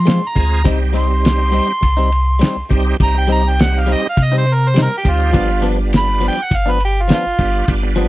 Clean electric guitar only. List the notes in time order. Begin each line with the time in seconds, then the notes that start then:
0.05 G#3 C4 F4
0.21 muted clean electric guitar stroke
0.35 muted clean electric guitar stroke
0.64 G3 C4 D#4
0.80 muted clean electric guitar stroke
0.93 G3 C4 D#4
1.08 muted clean electric guitar stroke
1.38 muted clean electric guitar stroke
1.52 G3 C4 D#4
1.68 muted clean electric guitar stroke
1.81 muted clean electric guitar stroke
1.97 G3 C4 D#4
2.11 muted clean electric guitar stroke
2.39 G3 C4 D#4
2.57 muted clean electric guitar stroke
2.69 muted clean electric guitar stroke
3.15 muted clean electric guitar stroke
3.27 G3 C4 D#4
3.43 muted clean electric guitar stroke
3.73 muted clean electric guitar stroke
3.87 G3 C4 D#4
4.02 muted clean electric guitar stroke
4.17 muted clean electric guitar stroke
4.32 G3 C4 D#4
4.45 muted clean electric guitar stroke
4.74 G3 C4 D#4
4.90 muted clean electric guitar stroke
5.04 muted clean electric guitar stroke
5.32 F3 B3 D4
5.49 muted clean electric guitar stroke
5.62 F3 B3 D4
5.78 muted clean electric guitar stroke
6.08 muted clean electric guitar stroke
6.21 F3 B3 D4
6.36 muted clean electric guitar stroke
6.50 muted clean electric guitar stroke
6.66 F3 B3 D4
6.79 muted clean electric guitar stroke
7.08 F3 B3 D4
7.24 muted clean electric guitar stroke
7.39 muted clean electric guitar stroke
7.83 muted clean electric guitar stroke
7.96 F3 B3 D4